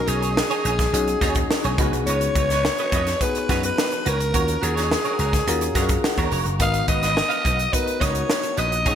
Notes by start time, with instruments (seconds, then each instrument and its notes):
Already playing: fm electric piano C#4 D#4 F#4 G#4
0.06 slap bass B1, clean electric guitar D#4 G#4 C#5, alto saxophone G#4, closed hi-hat
0.21 clean electric guitar D#4 G#4 C#5, closed hi-hat
0.36 muted clean electric guitar stroke, snare
0.50 clean electric guitar D#4 G#4 C#5, closed hi-hat
0.63 slap bass A#1, clean electric guitar D#4 G#4 C#5, closed hi-hat
0.77 muted clean electric guitar stroke, kick, snare, closed hi-hat
0.93 slap bass B1, fm electric piano C#4 D#4 F#4 G#4, muted clean electric guitar stroke, closed hi-hat
1.07 muted clean electric guitar stroke, closed hi-hat
1.21 slap bass D#2, fm electric piano C#4 D#4 F#4 G#4, clean electric guitar D#4 G#4 C#5, kick, snare, closed hi-hat
1.35 muted clean electric guitar stroke, kick, closed hi-hat
1.51 muted clean electric guitar stroke, snare
1.64 slap bass B1, clean electric guitar D#4 G#4 C#5, closed hi-hat
1.78 slap bass C#2, fm electric piano B3 D#4 F#4 G#4, clean electric guitar F#4 B4 C#5, kick, closed hi-hat
1.92 slap bass B1, muted clean electric guitar stroke, closed hi-hat
2.06 slap bass C#2, clean electric guitar F#4 B4 C#5, alto saxophone C#5, closed hi-hat
2.21 closed hi-hat
2.35 slap bass C#2, clean electric guitar F#4 B4 C#5, kick, closed hi-hat
2.50 clean electric guitar F#4 B4 C#5, snare, closed hi-hat
2.65 muted clean electric guitar stroke, snare
2.78 clean electric guitar F#4 B4 D#5, closed hi-hat
2.92 slap bass F2, clean electric guitar F#4 B4 D#5, kick, closed hi-hat
3.07 muted clean electric guitar stroke, snare, closed hi-hat
3.21 fm electric piano B3 D#4 F#4 G#4, alto saxophone B4, muted clean electric guitar stroke, kick, closed hi-hat
3.35 muted clean electric guitar stroke, closed hi-hat
3.49 slap bass F#2, fm electric piano B3 D#4 F#4 G#4, clean electric guitar F#4 B4 C#5, kick, snare, closed hi-hat
3.63 alto saxophone B4, muted clean electric guitar stroke, closed hi-hat
3.78 snare
3.92 muted clean electric guitar stroke, closed hi-hat
4.06 slap bass C#2, clean electric guitar F#4 B4 C#5, alto saxophone A#4, closed hi-hat
4.20 muted clean electric guitar stroke, closed hi-hat
4.33 slap bass D#2, fm electric piano C#4 F4 F#4 A#4, clean electric guitar F#4 A#4 C#5, kick, closed hi-hat
4.48 closed hi-hat
4.61 slap bass D#2, clean electric guitar F#4 A#4 C#5, alto saxophone G#4, closed hi-hat
4.75 clean electric guitar F#4 A#4 C#5, snare, closed hi-hat
4.90 muted clean electric guitar stroke, snare
5.04 clean electric guitar F#4 A#4 C#5, closed hi-hat
5.19 slap bass C#2, clean electric guitar F#4 A#4 C#5, closed hi-hat
5.33 muted clean electric guitar stroke, kick, snare, closed hi-hat
5.47 slap bass D#2, fm electric piano C#4 F4 F#4 A#4, muted clean electric guitar stroke, closed hi-hat
5.61 muted clean electric guitar stroke, closed hi-hat
5.75 slap bass F#2, fm electric piano C#4 F4 F#4 G#4 F5, clean electric guitar F#4 A#4 C#5, kick, snare, closed hi-hat
5.83 fm electric piano A#4
5.89 muted clean electric guitar stroke, kick, closed hi-hat
6.04 fm electric piano F#5, muted clean electric guitar stroke, snare
6.18 slap bass D#2, clean electric guitar F#4 A#4 C#5, kick, closed hi-hat
6.31 slap bass F1, clean electric guitar F#4 A#4 C#5, fm electric piano A#5, open hi-hat
6.45 slap bass F#1, muted clean electric guitar stroke, closed hi-hat
6.59 slap bass G#1, fm electric piano B3 D#4 F#4 A#4, clean electric guitar F#4 B4 D#5, alto saxophone F5, kick, closed hi-hat
6.74 closed hi-hat
6.87 slap bass G#1, clean electric guitar F#4 B4 D#5, alto saxophone D#5, kick, closed hi-hat
7.02 clean electric guitar F#4 B4 D#5, snare, closed hi-hat
7.16 muted clean electric guitar stroke, snare
7.29 clean electric guitar F#4 B4 F5, closed hi-hat
7.43 slap bass B1, clean electric guitar F#4 B4 F5, kick, closed hi-hat
7.58 muted clean electric guitar stroke, closed hi-hat
7.73 fm electric piano B3 D#4 F#4 A#4, alto saxophone B4, muted clean electric guitar stroke, kick, closed hi-hat
7.86 muted clean electric guitar stroke, closed hi-hat
8.00 slap bass C#2, fm electric piano B3 D#4 F#4 A#4, clean electric guitar F#4 B4 D#5, alto saxophone C#5, kick, snare, closed hi-hat
8.15 muted clean electric guitar stroke, closed hi-hat
8.30 snare
8.43 muted clean electric guitar stroke, closed hi-hat
8.57 slap bass A#1, clean electric guitar F#4 B4 D#5, alto saxophone D#5, closed hi-hat
8.72 muted clean electric guitar stroke, closed hi-hat
8.85 slap bass B1, fm electric piano C#4 D#4 F#4 G#4, clean electric guitar D#4 G#4 C#5, kick, closed hi-hat